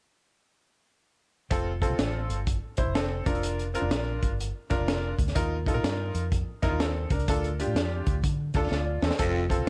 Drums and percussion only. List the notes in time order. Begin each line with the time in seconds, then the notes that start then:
1.51 kick, closed hi-hat
1.82 kick, closed hi-hat
1.99 snare, closed hi-hat
2.30 closed hi-hat
2.47 kick, closed hi-hat
2.77 kick, closed hi-hat
2.95 snare, closed hi-hat
3.26 kick, closed hi-hat
3.35 closed hi-hat
3.43 closed hi-hat
3.59 closed hi-hat
3.75 closed hi-hat
3.91 snare, closed hi-hat
4.23 kick, closed hi-hat
4.40 closed hi-hat
4.70 kick, snare, closed hi-hat
4.88 snare, closed hi-hat
5.19 kick, closed hi-hat
5.28 snare, closed hi-hat
5.36 kick, closed hi-hat
5.66 kick, closed hi-hat
5.84 snare, closed hi-hat
6.15 closed hi-hat
6.32 kick, closed hi-hat
6.63 kick, snare, closed hi-hat
6.80 snare, closed hi-hat
7.10 kick, closed hi-hat
7.19 closed hi-hat
7.28 kick, closed hi-hat
7.44 closed hi-hat
7.60 closed hi-hat
7.76 snare, closed hi-hat
8.06 kick, closed hi-hat
8.24 kick, closed hi-hat
8.54 kick, snare, closed hi-hat
8.72 snare
9.02 snare
9.11 snare
9.19 kick, closed hi-hat
9.50 kick, closed hi-hat